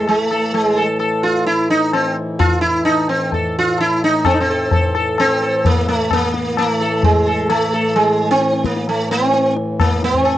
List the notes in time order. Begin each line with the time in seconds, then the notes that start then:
Already playing: A2 E3
0.08 G#3, tabla na
0.21 A3
0.31 A4, tabla na
0.54 G#3, tabla na
0.77 A4
0.99 A4, tabla na
1.23 F4
1.46 E4, tabla tin
1.70 D#4
1.93 C4, tabla na
2.39 F4, tabla na, tabla ge
2.61 E4
2.85 D#4, tabla na
3.09 C4
3.32 A4, tabla tin, tabla ge
3.59 F4
3.78 E4, tabla na
4.04 D#4
4.25 A2 E3 C4 A4, tabla na, tabla ge
4.34 D#4
4.40 C4
4.50 A4
4.71 A4, tabla tin, tabla ge
4.95 A4, tabla na
5.18 C4, tabla na
5.42 A4
5.65 A#3, tabla tin, tabla ge
5.88 A3, tabla na
6.11 A#3, tabla na, tabla ge
6.34 tabla te
6.57 A#3, tabla na
6.70 A3
6.80 A4, tabla na
7.03 G#3, tabla tin, tabla ge
7.27 A4
7.50 A3, tabla na
7.73 A4
7.96 G#3, tabla na
8.31 C4
8.42 tabla te
8.53 tabla te
8.64 A#3, tabla ke
8.77 tabla te
8.88 A3, tabla tin
9.11 C4
9.34 tabla te
9.57 tabla te
9.80 A#3, tabla na, tabla ge
10.03 C4, tabla te
10.14 tabla ge
10.25 tabla na